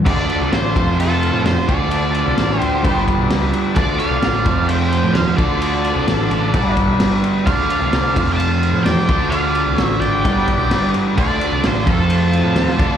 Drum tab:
CC |xxxxxxxx|xxxxxxxx|xxxxxxxx|xxxxxxxx|
SD |--o---o-|--o---o-|--o---o-|--o---o-|
BD |o--o---o|----oo--|o--o---o|----oo--|

CC |xxxxxxxx|xxxxxxxx|xxxxxxxx|
SD |--o---o-|--o---o-|--o---o-|
BD |o--o---o|----oo--|o--o---o|